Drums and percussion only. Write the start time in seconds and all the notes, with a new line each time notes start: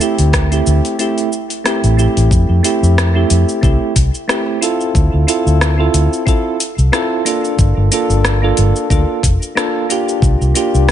0.01 shaker
0.18 open hi-hat, shaker
0.33 kick, cross-stick, open hi-hat, shaker
0.52 open hi-hat, shaker
0.67 shaker
0.85 open hi-hat, shaker
0.99 open hi-hat, shaker
1.18 open hi-hat, shaker
1.33 shaker
1.50 open hi-hat, shaker
1.66 cross-stick, open hi-hat, shaker
1.84 open hi-hat, shaker
1.99 shaker
2.17 open hi-hat, shaker
2.31 kick, shaker
2.64 open hi-hat, shaker
2.84 shaker
2.98 cross-stick, shaker
3.30 open hi-hat, shaker
3.49 shaker
3.63 kick, shaker
3.96 kick, open hi-hat, shaker
4.15 shaker
4.29 cross-stick, shaker
4.62 open hi-hat, shaker
4.81 shaker
4.95 kick, shaker
5.28 open hi-hat, shaker
5.47 shaker
5.61 cross-stick, shaker
5.94 open hi-hat, shaker
6.13 shaker
6.27 kick, shaker
6.60 open hi-hat, shaker
6.79 shaker
6.93 cross-stick, shaker
7.26 open hi-hat, shaker
7.44 shaker
7.59 kick, shaker
7.92 open hi-hat, shaker
8.10 shaker
8.25 cross-stick, shaker
8.57 open hi-hat, shaker
8.76 shaker
8.90 kick, shaker
9.23 kick, open hi-hat, shaker
9.42 shaker
9.57 cross-stick, shaker
9.90 open hi-hat, shaker
10.09 shaker
10.22 kick, shaker
10.42 shaker
10.55 open hi-hat, shaker
10.75 shaker
10.89 cross-stick, shaker